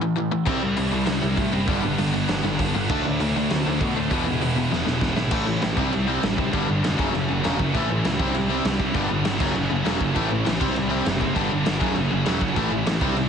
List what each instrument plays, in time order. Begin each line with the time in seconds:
0.01 overdriven electric guitar A2 E3
0.16 overdriven electric guitar A2 E3
0.31 overdriven electric guitar A2 E3
0.46 picked electric bass C2, overdriven electric guitar C3 G3 C4, distorted electric guitar E4, kick, crash
0.61 picked electric bass C2, overdriven electric guitar C3 G3
0.77 picked electric bass C2, overdriven electric guitar C3 G3, open hi-hat
0.92 picked electric bass C2, overdriven electric guitar C3 G3
1.06 picked electric bass C2, overdriven electric guitar C3 G3, snare, open hi-hat
1.22 picked electric bass C2, overdriven electric guitar C3 G3
1.36 picked electric bass A2, overdriven electric guitar C3 G3, kick, open hi-hat
1.51 picked electric bass F#1, overdriven electric guitar C3 G3, distorted electric guitar C4 E4
1.68 picked electric bass G1, overdriven electric guitar G2 D3 G3, distorted electric guitar B3 D4, kick, open hi-hat
1.82 picked electric bass G1, overdriven electric guitar G2 D3
1.98 picked electric bass G1, overdriven electric guitar G2 D3, open hi-hat
2.13 overdriven electric guitar G2 D3
2.28 picked electric bass G1, overdriven electric guitar G2 D3, snare, open hi-hat
2.44 picked electric bass G1, overdriven electric guitar G2 D3
2.59 picked electric bass G1, overdriven electric guitar G2 D3, kick, open hi-hat
2.75 picked electric bass G1, overdriven electric guitar G2 D3, distorted electric guitar G3 B3 D4
2.89 picked electric bass D2, overdriven electric guitar D3 A3 D4, distorted electric guitar F#3, kick, crash
3.05 picked electric bass D2, overdriven electric guitar D3 A3
3.20 picked electric bass D2, overdriven electric guitar D3 A3, open hi-hat
3.35 picked electric bass D2, overdriven electric guitar D3 A3
3.50 picked electric bass D2, overdriven electric guitar D3 A3, snare, open hi-hat
3.66 picked electric bass D2, overdriven electric guitar D3 A3
3.81 picked electric bass B2, overdriven electric guitar D3 A3, kick, open hi-hat
3.96 picked electric bass D2, overdriven electric guitar D3 A3, distorted electric guitar F#3 D4
4.11 picked electric bass E1, overdriven electric guitar E2 B2 E3, distorted electric guitar G#3 B3 E4, kick, open hi-hat
4.25 picked electric bass E1, overdriven electric guitar E2 B2
4.41 picked electric bass E1, overdriven electric guitar E2 B2, open hi-hat
4.56 overdriven electric guitar E2 B2
4.71 picked electric bass E1, overdriven electric guitar E2 B2, snare
4.85 picked electric bass E1, overdriven electric guitar E2 B2, snare
5.01 picked electric bass E1, overdriven electric guitar E2 B2, kick, snare
5.15 picked electric bass G#1, overdriven electric guitar E2 B2, distorted electric guitar E3 G#3 B3 E4, snare
5.31 picked electric bass A1, overdriven electric guitar A2 E3 A3, distorted electric guitar C#4 E4, kick, crash
5.47 picked electric bass A1, overdriven electric guitar A2 E3
5.62 picked electric bass A1, overdriven electric guitar A2 E3, snare, crash
5.77 picked electric bass C2, overdriven electric guitar C3 G3 C4, distorted electric guitar E4, kick
5.92 picked electric bass C2, overdriven electric guitar C3 G3, crash
6.07 overdriven electric guitar C3 G3 C4
6.22 picked electric bass A1, overdriven electric guitar C3 G3, snare, crash
6.38 overdriven electric guitar C3 G3, distorted electric guitar C4 E4, kick
6.53 picked electric bass G1, overdriven electric guitar G2 D3 G3, distorted electric guitar B3 D4, kick, crash
6.69 picked electric bass G1, overdriven electric guitar G2 D3
6.83 picked electric bass F1, overdriven electric guitar G2 D3, snare, crash
6.98 picked electric bass F#1, overdriven electric guitar F#2 C#3 F#3, distorted electric guitar A3 C#4, kick
7.14 picked electric bass F#1, overdriven electric guitar F#2 C#3, crash
7.29 picked electric bass F#1, overdriven electric guitar F#2 C#3
7.44 picked electric bass E1, overdriven electric guitar F#2 C#3 F#3, snare, crash
7.58 picked electric bass F#1, overdriven electric guitar F#2 C#3, distorted electric guitar F#3 A3 C#4, kick
7.74 picked electric bass A1, overdriven electric guitar A2 E3 A3, distorted electric guitar C#4 E4, kick, crash
7.89 picked electric bass A1, overdriven electric guitar A2 E3
8.04 picked electric bass C#2, overdriven electric guitar A2 E3, snare, crash
8.19 picked electric bass C2, overdriven electric guitar C3 G3 C4, distorted electric guitar E4, kick
8.34 picked electric bass C2, overdriven electric guitar C3 G3, crash
8.50 overdriven electric guitar C3 G3 C4
8.65 picked electric bass C2, overdriven electric guitar C3 G3, snare, crash
8.79 overdriven electric guitar C3 G3, distorted electric guitar C4 E4, kick
8.94 picked electric bass G1, overdriven electric guitar G2 D3 G3, distorted electric guitar B3 D4, kick, crash
9.10 picked electric bass G1, overdriven electric guitar G2 D3
9.25 picked electric bass G1, overdriven electric guitar G2 D3, snare, crash
9.40 picked electric bass F#1, overdriven electric guitar F#2 C#3 F#3, distorted electric guitar A3 C#4, kick, crash
9.55 picked electric bass F#1, overdriven electric guitar F#2 C#3, crash
9.70 picked electric bass F#1, overdriven electric guitar F#2 C#3
9.85 picked electric bass E1, overdriven electric guitar F#2 C#3 F#3, snare, crash
10.01 picked electric bass F#1, overdriven electric guitar F#2 C#3, distorted electric guitar F#3 A3 C#4, kick
10.15 picked electric bass A1, overdriven electric guitar A2 E3 A3, distorted electric guitar C#4 E4, kick, crash
10.31 picked electric bass A1, overdriven electric guitar A2 E3
10.45 picked electric bass A1, overdriven electric guitar A2 E3, snare, crash
10.60 picked electric bass C2, overdriven electric guitar C3 G3 C4, distorted electric guitar E4, kick, crash
10.76 picked electric bass C2, overdriven electric guitar C3 G3, crash
10.90 overdriven electric guitar C3 G3 C4
11.05 picked electric bass F#1, overdriven electric guitar C3 G3, snare, crash
11.20 overdriven electric guitar C3 G3, distorted electric guitar C4 E4, kick
11.35 picked electric bass G1, overdriven electric guitar G2 D3 G3, distorted electric guitar B3 D4, kick, crash
11.50 picked electric bass G1, overdriven electric guitar G2 D3
11.65 picked electric bass G1, overdriven electric guitar G2 D3, snare, crash
11.80 picked electric bass F#1, overdriven electric guitar F#2 C#3 F#3, distorted electric guitar A3 C#4, kick
11.95 picked electric bass F#1, overdriven electric guitar F#2 C#3, crash
12.11 picked electric bass F#1, overdriven electric guitar F#2 C#3
12.26 picked electric bass E1, overdriven electric guitar F#2 C#3 F#3, snare, crash
12.40 picked electric bass F#1, overdriven electric guitar F#2 C#3, distorted electric guitar F#3 A3 C#4, kick
12.56 picked electric bass A1, overdriven electric guitar A2 E3 A3, distorted electric guitar C#4 E4, kick, crash
12.71 picked electric bass A1, overdriven electric guitar A2 E3
12.86 picked electric bass A1, overdriven electric guitar A2 E3, snare, crash
13.01 picked electric bass C2, overdriven electric guitar C3 G3 C4, distorted electric guitar E4, kick
13.16 picked electric bass C2, overdriven electric guitar C3 G3, crash